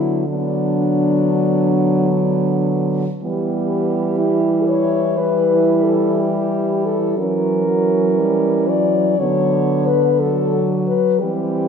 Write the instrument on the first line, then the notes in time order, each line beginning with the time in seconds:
french horn
Already playing: D3 F#3 B3 E4
0.28 F#3 B3 D4
3.22 E3 G3 B3 G4
4.17 E4
4.68 C#5
5.18 G3 B4
5.84 A4
6.19 G4
6.86 A4
7.17 E3 F#3 C#4 A#4
7.67 F#3
8.18 G3
8.69 F#3 D5
9.19 D3 F#3 B3 C#5
9.87 B4
10.20 F#3 A4
10.88 B4
11.20 E3 G3 C4 G4